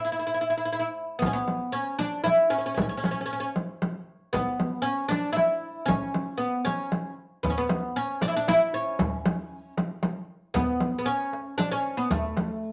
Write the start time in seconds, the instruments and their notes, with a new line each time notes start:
0.05 oud E4
0.12 oud E4
0.19 oud E4
0.27 oud E4
0.34 oud E4
0.41 oud E4
0.50 oud E4
0.58 oud E4
0.65 oud E4
0.73 oud E4
0.79 oud E4
1.19 oud B3, frame drum
1.26 oud C#4
1.33 oud B3
1.48 frame drum
1.72 oud C#4
1.99 oud D4, frame drum
2.24 oud E4, frame drum
2.50 oud C#4
2.58 oud C#4
2.66 oud C#4
2.74 oud C#4, frame drum
2.82 oud C#4
2.89 oud C#4
2.97 oud C#4
3.04 oud C#4, frame drum
3.11 oud C#4
3.21 oud C#4
3.26 oud C#4
3.33 oud C#4
3.40 oud C#4
3.56 frame drum
3.82 frame drum
4.33 oud B3, frame drum
4.60 frame drum
4.82 oud C#4
5.08 oud D4, frame drum
5.33 oud E4
5.37 frame drum
5.86 oud C#4, frame drum
6.14 frame drum
6.38 oud B3
6.65 oud C#4, frame drum
6.92 frame drum
7.43 oud B3, tombak dum, frame drum
7.50 oud C#4
7.58 oud B3
7.69 tombak tek, frame drum
7.96 oud C#4
8.21 oud D4, tombak tek, frame drum
8.28 oud E4
8.36 oud D4
8.48 oud E4, tombak tek, frame drum
8.74 oud C#4
8.99 frame drum, tombak dum
9.26 tombak tek, frame drum
9.77 tombak tek, frame drum
10.03 tombak tek, frame drum
10.54 oud B3, frame drum, tombak dum
10.80 frame drum
10.99 oud B3
11.06 oud C#4
11.33 tombak tek
11.58 oud D4, tombak tek, frame drum
11.72 oud C#4
11.97 oud B3
12.11 oud A3, frame drum, tombak dum
12.37 tombak tek, frame drum